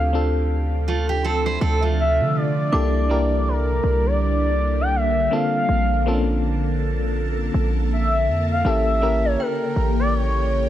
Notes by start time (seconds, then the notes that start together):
Already playing: D2 C3 F3 C4 D4 F4 A4 F5
0.13 C4 D4 F4 A4
0.88 A3 F4
1.09 G4
1.24 C4 A4
1.46 E4 C5
1.61 D2 C4 A4
1.82 A3 F4
2.00 E5
2.20 D3
2.36 D5
2.72 C2 D3 G3 A#3 D4 E4 G4 A4 D6
3.09 A#3 D4 E4 G4 A#4
3.48 A#4
3.84 C2
4.06 D5
4.22 D5
4.81 G5
4.96 E5
5.31 A#3 C4 D4 F4 A4 F5
5.69 A#1
6.06 A#3 C4 C#4 F4 A4
6.13 D4
7.54 A#1
7.93 E5
8.28 F2
8.51 F5
8.64 A1 C#3 A#3 C#4 E4 G4 A4 E5
9.01 A#3 C#4 E4 G4 A#4
9.25 C#5
9.40 A#4 G5
9.76 A1
9.99 D5
10.09 D5
10.14 C#5